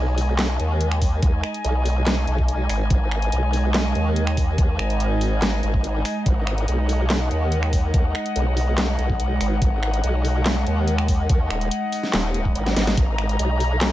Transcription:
Already playing: B1 G#3 D#4 D#5 G#5
0.18 open hi-hat
0.39 snare, clap, closed hi-hat
0.60 D#2, closed hi-hat
0.81 closed hi-hat
0.92 finger snap
1.02 kick, open hi-hat
1.23 D#2, kick, closed hi-hat
1.44 finger snap
1.54 closed hi-hat
1.64 B1, closed hi-hat
1.86 open hi-hat
2.07 snare, clap, closed hi-hat
2.27 B1, closed hi-hat
2.38 kick
2.48 closed hi-hat
2.69 G#1, finger snap, open hi-hat
2.90 G#1, kick, closed hi-hat
3.11 finger snap
3.22 closed hi-hat
3.32 B1, closed hi-hat
3.53 open hi-hat
3.74 snare, clap, closed hi-hat
3.95 D#2, closed hi-hat
4.16 closed hi-hat
4.27 finger snap
4.37 kick, open hi-hat
4.58 D#2, kick, closed hi-hat
4.79 G#1, finger snap
4.90 closed hi-hat
5.00 closed hi-hat
5.21 open hi-hat
5.42 snare, clap, closed hi-hat
5.63 G#1, closed hi-hat
5.74 kick
5.84 closed hi-hat
6.05 finger snap, open hi-hat
6.26 G#1 F#5, kick, closed hi-hat
6.47 finger snap
6.58 closed hi-hat
6.68 B1, closed hi-hat
6.89 open hi-hat
7.10 snare, clap, closed hi-hat
7.31 D#2, closed hi-hat
7.52 closed hi-hat
7.63 finger snap
7.73 kick, open hi-hat
7.94 D#2, kick, closed hi-hat
8.15 finger snap
8.26 closed hi-hat
8.36 B1, closed hi-hat
8.57 open hi-hat
8.78 snare, clap, closed hi-hat
8.99 B1, closed hi-hat
9.10 kick
9.20 closed hi-hat
9.41 G#1, finger snap, open hi-hat
9.62 G#1, kick, closed hi-hat
9.83 finger snap
9.94 closed hi-hat
10.04 B1, closed hi-hat
10.25 open hi-hat
10.46 snare, clap, closed hi-hat
10.67 D#2, closed hi-hat
10.88 closed hi-hat
10.98 finger snap
11.08 kick, open hi-hat
11.29 D#2, kick, closed hi-hat
11.50 D#1, finger snap
11.61 closed hi-hat
11.71 closed hi-hat
11.92 open hi-hat
12.03 snare
12.13 D#1, snare, clap, closed hi-hat
12.34 closed hi-hat
12.45 kick
12.55 G#1, closed hi-hat
12.66 snare
12.76 G#1, snare, open hi-hat
12.87 snare
12.97 G#1 A#5, kick, closed hi-hat
13.18 finger snap
13.29 closed hi-hat
13.39 B1, closed hi-hat
13.60 open hi-hat
13.81 snare, clap, closed hi-hat

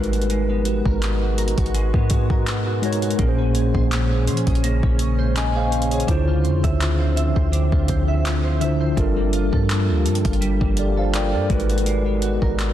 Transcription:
Already playing: G#1 B2 G#3 A#3 D#4 F#4 A#4 B4
0.04 closed hi-hat
0.13 F#4, closed hi-hat
0.22 closed hi-hat
0.30 G#3, closed hi-hat
0.49 B3
0.65 F#4, closed hi-hat
0.85 G#1 A#4, kick
1.02 B3, clap, closed hi-hat
1.22 F#4
1.38 A#4, closed hi-hat
1.48 closed hi-hat
1.58 G#1 F#4, kick, closed hi-hat
1.66 closed hi-hat
1.75 G#3, closed hi-hat
1.94 G#2 B3, kick
2.10 F#4, kick, closed hi-hat
2.30 A#4, kick
2.47 B3, clap, closed hi-hat
2.66 F#4
2.82 G#3 D#4 F#4 A#4 C#5, closed hi-hat
2.93 closed hi-hat
3.02 F#4, closed hi-hat
3.10 closed hi-hat
3.18 A#1 A#2 C#3 A#3 C#4 G#4 A#4, kick, closed hi-hat
3.28 C5
3.39 C#4
3.55 G#4, closed hi-hat
3.74 A#1 C5, kick
3.91 C#4, clap, closed hi-hat
4.11 G#4
4.27 F3 C5, closed hi-hat
4.37 closed hi-hat
4.47 A#1 G#4, kick, closed hi-hat
4.55 closed hi-hat
4.64 A#3, closed hi-hat
4.83 A#1 C#4, kick
4.99 G#4, closed hi-hat
5.19 C5
5.35 C#4 D#5 G#5, clap, closed hi-hat
5.55 G#4 C5 F5
5.72 C5, closed hi-hat
5.82 closed hi-hat
5.91 G#4 C#5, closed hi-hat
6.00 closed hi-hat
6.07 D2 D3 F3 C4 D4 E4 F4 C5 E5, kick, closed hi-hat
6.28 F4
6.44 F2 C5, closed hi-hat
6.64 D2 E5, kick, closed hi-hat
6.80 F4, clap, closed hi-hat
7.00 C5
7.16 E5, closed hi-hat
7.36 D2 C5, kick
7.52 D4, closed hi-hat
7.72 D2 F4, kick
7.88 C5, kick, closed hi-hat
8.08 E5
8.25 F4, clap, closed hi-hat
8.44 C5
8.61 D3 D4 E4 F4 C5 E5, closed hi-hat
8.80 C5
8.97 G1 G3 D4 F4 G4 A4 A#4, kick, closed hi-hat
9.17 A#3
9.33 F4, closed hi-hat
9.52 G2 A4, kick
9.69 A#3, clap, closed hi-hat
9.89 D2 F4
10.05 G2 A4, closed hi-hat
10.15 closed hi-hat
10.25 G1 F4, kick, closed hi-hat
10.33 closed hi-hat
10.41 G3, closed hi-hat
10.61 G1 A#3, kick
10.77 F4 A4 D5, closed hi-hat
10.97 A4 C5 F5
11.14 A#3 D5 G5, clap, closed hi-hat
11.33 G2 F4 A4 D5
11.49 G#1 B2 G#3 D#4 F#4 A#4 B4, kick, closed hi-hat
11.60 closed hi-hat
11.70 F#4, closed hi-hat
11.78 closed hi-hat
11.86 G#3, closed hi-hat
12.06 B3
12.22 F#4, closed hi-hat
12.42 G#1 A#4, kick
12.59 B3, clap, closed hi-hat

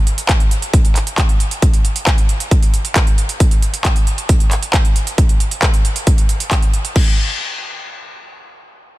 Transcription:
0.07 closed hi-hat
0.18 closed hi-hat
0.29 kick, clap, closed hi-hat
0.40 closed hi-hat
0.51 closed hi-hat
0.62 closed hi-hat
0.74 kick, closed hi-hat
0.85 closed hi-hat
0.96 clap, closed hi-hat
1.07 closed hi-hat
1.18 kick, clap, closed hi-hat
1.29 closed hi-hat
1.40 closed hi-hat
1.51 closed hi-hat
1.62 kick, closed hi-hat
1.74 closed hi-hat
1.85 closed hi-hat
1.96 closed hi-hat
2.07 kick, clap, closed hi-hat
2.18 closed hi-hat
2.29 closed hi-hat
2.40 closed hi-hat
2.51 kick, closed hi-hat
2.63 closed hi-hat
2.74 closed hi-hat
2.85 closed hi-hat
2.96 kick, clap, closed hi-hat
3.07 closed hi-hat
3.18 closed hi-hat
3.29 closed hi-hat
3.40 kick, closed hi-hat
3.51 closed hi-hat
3.62 closed hi-hat
3.74 closed hi-hat
3.85 kick, clap, closed hi-hat
3.96 closed hi-hat
4.07 closed hi-hat
4.18 closed hi-hat
4.29 kick, closed hi-hat
4.40 closed hi-hat
4.51 clap, closed hi-hat
4.63 closed hi-hat
4.74 kick, clap, closed hi-hat
4.85 closed hi-hat
4.96 closed hi-hat
5.07 closed hi-hat
5.18 kick, closed hi-hat
5.29 closed hi-hat
5.40 closed hi-hat
5.51 closed hi-hat
5.63 kick, clap, closed hi-hat
5.74 closed hi-hat
5.85 closed hi-hat
5.96 closed hi-hat
6.07 kick, closed hi-hat
6.18 closed hi-hat
6.29 closed hi-hat
6.40 closed hi-hat
6.51 kick, clap, closed hi-hat
6.62 closed hi-hat
6.74 closed hi-hat
6.85 closed hi-hat
6.96 kick, crash

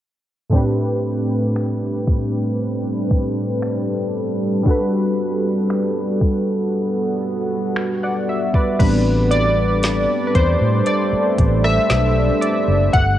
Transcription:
0.50 A2 G3 A3 C4 D4 A4 B4, kick
0.54 D4 G4 B4
1.56 finger snap
2.07 kick
3.11 kick
3.62 finger snap
4.63 G3 B3 D4 F#4, kick
4.69 A4 B4
5.70 finger snap
6.21 kick
6.73 F#4
7.76 finger snap
8.03 D5 F#5
8.29 E5
8.54 B4 D5, kick
8.79 A1 G3 A3 B3 C4 D4 A4 B4, kick, closed hi-hat, crash
9.31 D5, closed hi-hat
9.83 snare, closed hi-hat
10.27 B4
10.35 E2 C5, kick, closed hi-hat
10.61 A2
10.86 D5, closed hi-hat
11.13 muted fingered electric bass stroke
11.38 A1, kick, closed hi-hat
11.64 E5, cross-stick
11.90 B1, snare, closed hi-hat
12.41 D5, closed hi-hat
12.68 F#1
12.93 G1 F#3 B3 A4 F#5, kick, closed hi-hat

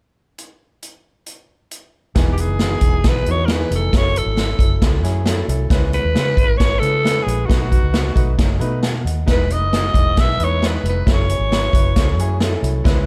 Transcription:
0.38 closed hi-hat
0.83 closed hi-hat
1.26 closed hi-hat
1.71 closed hi-hat
2.15 E1 E3 B3 D#4 G#4, kick, snare, closed hi-hat
2.33 G4
2.38 E3 B3 D#4 G#4 B4, closed hi-hat
2.49 F#1
2.59 E3 B3 D#4 F#4, snare, closed hi-hat
2.81 E1 E3 B3 D#4 G#4, kick, closed hi-hat
3.04 B1 E3 B3 D#4 G#4, kick, snare, closed hi-hat
3.08 B4
3.26 E2 E3 B3 D#4 F#4, closed hi-hat
3.31 C#5
3.45 E3 A#4, snare, closed hi-hat
3.50 B3 D#4 G#4 B4
3.71 F1 E3 B3 D#4 G#4, closed hi-hat
3.75 A4
3.93 F#1 F#3 C#4 E4 A4, kick, snare, closed hi-hat
3.97 C#5
4.16 F#3 E4 A4, closed hi-hat
4.26 G#1
4.37 F#3 C#4 E4 A4, snare, closed hi-hat
4.59 F#1 F#3 C#4 E4 A4, kick, closed hi-hat
4.82 C#2 F#3 C#4 E4 A4, kick, snare, closed hi-hat
5.03 F#2 F#3 C#4 E4 G#4, snare, closed hi-hat
5.26 F#3 C#4 E4 A4, snare, closed hi-hat
5.48 C2 F#3 C#4 E4 A4, closed hi-hat
5.70 C#2 G#3 C#4 E4 B4, kick, snare, closed hi-hat
5.92 G#3 C#4 E4 B4, closed hi-hat
6.05 D#2
6.14 C#3 G#3 C#4 E4 B4, snare, closed hi-hat
6.37 G#1 G#3 C#4 E4 B4, kick, closed hi-hat
6.58 G#1 G#3 C#4 E4 B4 C#5, kick, snare, closed hi-hat
6.79 C#3 G#3 C#4 E4 A4 B4, closed hi-hat
7.04 G#3 C#4 E4 B4, snare, closed hi-hat
7.23 A#1 G#3 C#4 G#4 B4
7.27 E4, closed hi-hat
7.46 B1 A3 D#4 F#4 B4, kick
7.50 snare, closed hi-hat
7.70 A3 D#4 F#4 B4, kick, closed hi-hat
7.83 C#2
7.92 A3 D#4 F#4 B4, snare, closed hi-hat
8.15 B1 A3 D#4 F#4 B4, kick, closed hi-hat
8.37 F#1 A3 D#4 F#4 C#5, kick, snare, closed hi-hat
8.59 B2 A3 D#4 F#4 B4 B5, closed hi-hat
8.82 F#5 A5, snare, closed hi-hat
9.05 D#2 D#5 F#5, closed hi-hat
9.26 E1 G#3 D#4 E4 B4, kick, snare, closed hi-hat
9.30 B4
9.50 G#3 D#4 E4 B4 D#5, closed hi-hat
9.61 F#1
9.73 G#3 D#4 E4 F#4, snare, closed hi-hat
9.94 E1 G#3 D#4 E4 G#4, kick, closed hi-hat
10.16 B1 G#3 D#4 E4 B4, kick, snare, closed hi-hat
10.20 E5
10.38 E2 G#3 D#4 E4 B4, closed hi-hat
10.44 C#5
10.62 G#3 D#4 E4 B4, snare, closed hi-hat
10.67 B4
10.83 F1 G#3 D#4 E4 B4, closed hi-hat
10.89 B4
11.06 F#1 F#3 C#4 E4 A4, kick, snare, closed hi-hat
11.13 C#5
11.29 F#3 C#4 E4 G#4, closed hi-hat
11.39 G#1
11.51 F#3 C#4 E4 B4, snare, closed hi-hat
11.73 F#1 F#3 C#4 E4 B4, kick, closed hi-hat
11.96 C#2 F#3 C#4 E4 A4, kick, snare, closed hi-hat
12.17 F#2 F#3 C#4 E4 G#4, closed hi-hat
12.40 F#3 C#4 E4 A4, snare, closed hi-hat
12.62 C2 F#3 C#4 E4 A4, closed hi-hat
12.84 C#2 G#3 C#4 E4 B4, kick, snare, closed hi-hat

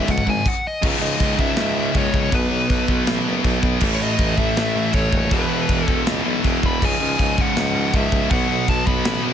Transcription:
Already playing: C#2 G#2 C#3 E5
0.08 C#2 G#2 F#5, kick, china
0.18 kick
0.26 G#1 C#2 G#2 G#5, kick
0.46 F#5, kick, crash
0.67 D#5
0.82 C#2 G#2 C#3, kick, crash, china
1.01 C#2 D#5
1.20 C#2, kick, china
1.38 C#2 G#2 C#3 E5, kick
1.56 C#2, snare, china
1.76 C#2 G#2 C#3
1.94 C#2 G#2 C#3 C#5, kick, china
2.14 C#2, kick
2.31 B1 B2 F#3 B3 B4, kick, china
2.51 B1
2.70 B1, kick, china
2.88 B1 F#3 B3, kick
2.92 B2
3.07 A1, snare, china
3.25 F#1 B2 F#3 B3
3.44 B1 B2 F#3 B3, kick, china
3.63 B1, kick
3.80 A1 A2 E3, kick, china, crash
3.85 A3
3.95 C#5
4.01 A1 D#5
4.19 A1, kick, china
4.37 A1 E3 A3 E5, kick
4.42 A2
4.57 A1, snare, china
4.75 A2 E3 A3
4.93 A1 A2 E3 A3 C#5, kick, china
5.13 D#1, kick
5.30 E1 E2 B2 E3 B4, kick, china
5.50 E1
5.69 E1, kick, china
5.84 E1 E3 A4, kick
5.89 E2 B2
6.07 C#2, snare, china
6.25 B1 E2 B2 E3
6.43 E1 E2 B2 E3, kick, china
6.63 E1 B5, kick
6.80 C#2 G#2 C#3, kick, crash, china
6.85 G#5
7.01 C#2
7.19 C#2, kick, china
7.38 C#2 G#2 C#3 F#5, kick
7.56 C#2, snare, china
7.75 C#2 G#2 C#3
7.93 C#2 G#2 C#3 E5, kick, china
8.12 C#2, kick
8.30 B1 B2 F#3 B3 F#5, kick, china
8.50 B1
8.68 B1 A5, kick, china
8.87 B1 B2 F#3 B3 B5, kick
9.05 A1, snare, china
9.24 F#1 B2 F#3 B3

